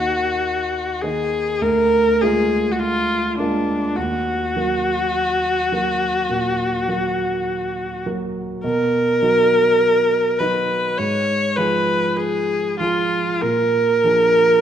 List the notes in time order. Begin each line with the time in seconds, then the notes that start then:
Already playing: D#2 D#3 A#3 D#4 F#4
1.02 D#3 A#3 D#4 G#4
1.62 D2 A#4
2.21 G#3 A#3 F4 G#4
2.72 F#4
2.79 F4
3.38 G#3 A#3 D4 F4
3.96 D#2 F#4
4.56 F#3 A#3 F#4
5.72 F#3 A#3 F#4
6.29 A#2
6.88 F#3 A#3 F#4
8.06 F#3 A#3 F#4
8.64 B2 A#4
9.22 F#3 D#4 F#4
10.39 F#3 D#4 F#4 B4
10.97 G#2 C#5
11.56 F3 F4 G#4 B4
12.17 G#4
12.79 F3 F4 G#4
13.42 A#2 A#4
14.04 F3 D4 G#4